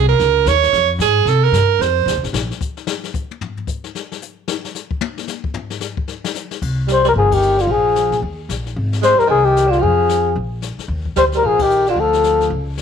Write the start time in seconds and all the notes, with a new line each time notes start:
Already playing: C2
0.09 A#4
0.19 C#2, brush sweep, snare
0.46 D#2 C#5, snare, hi-hat pedal
0.63 snare
0.73 F2, brush sweep, snare
0.99 G#2 G#4, snare, hi-hat pedal
1.25 C3 A4, brush sweep, snare
1.44 A#4
1.52 G2, snare, hi-hat pedal
1.79 F2 C5, brush sweep, snare
2.06 D#2, snare, hi-hat pedal
2.15 C2
2.23 A1, snare
2.33 A#1, snare
2.51 snare
2.61 kick, hi-hat pedal
2.77 snare
2.87 snare
3.04 snare
3.14 kick, hi-hat pedal
3.31 high tom
3.41 floor tom
3.57 floor tom
3.67 kick, hi-hat pedal
3.84 snare
3.95 snare
4.12 snare
4.22 hi-hat pedal
4.48 snare
4.65 snare
4.75 snare, hi-hat pedal
4.91 kick
5.01 high tom
5.18 snare
5.28 snare, hi-hat pedal
5.44 kick
5.54 floor tom
5.70 snare
5.80 snare, hi-hat pedal
5.97 kick
6.08 snare
6.24 snare
6.35 snare, hi-hat pedal
6.51 snare
6.62 C2, brush sweep, kick, crash
6.88 G3, snare, hi-hat pedal
6.92 C5
7.04 G3, snare
7.09 A#4
7.14 G1 F3, brush sweep
7.18 G#4
7.31 D#3 G4, kick, ride
7.42 hi-hat pedal
7.58 D3 F4, snare
7.67 A#1 F3, brush sweep
7.72 G#4
7.96 snare, hi-hat pedal
8.11 A#2, snare
8.22 D#2, brush sweep
8.49 A#1, snare, hi-hat pedal
8.66 snare
8.76 G#1, brush sweep
8.93 snare
9.02 G#3 C5, snare, hi-hat pedal
9.15 G3 A#4, muted upright bass stroke
9.20 snare
9.27 C2 D#3 G#4, brush sweep
9.43 D#3 G4
9.56 snare, hi-hat pedal
9.67 D3 F4
9.73 snare
9.79 F2 F3 G#4, brush sweep
10.09 snare, hi-hat pedal
10.36 A#1, brush sweep
10.62 snare, hi-hat pedal
10.78 muted upright bass stroke, snare
10.88 D#2, brush sweep
11.05 kick
11.16 D2 G3 C5, snare, hi-hat pedal
11.32 G3, snare
11.37 A#4
11.43 A#1 F3 G#4, brush sweep
11.59 D#3 G4, kick, ride
11.70 hi-hat pedal
11.86 D3 F4, snare
11.96 D2 F3 A4, brush sweep
12.13 snare
12.24 snare, hi-hat pedal
12.40 snare
12.50 C#2, brush sweep
12.77 snare, hi-hat pedal